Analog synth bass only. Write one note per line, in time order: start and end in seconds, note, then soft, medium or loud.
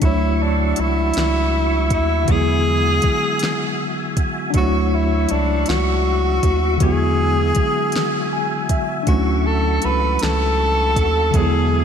0.03 0.74 D2 loud
0.79 1.12 C#2 medium
1.17 1.93 C#2 medium
1.92 2.25 D#2 medium
2.29 3.00 E2 loud
3.05 3.12 E2 soft
4.55 5.26 D2 loud
5.31 5.65 C#2 medium
5.69 6.40 C#2 loud
6.44 6.78 D#2 medium
6.82 7.53 E2 loud
7.57 7.65 E2 soft
9.08 9.79 D2 loud
9.85 10.18 C#2 medium
10.23 10.99 C#2 medium
10.97 11.31 D#2 medium
11.35 11.85 E2 loud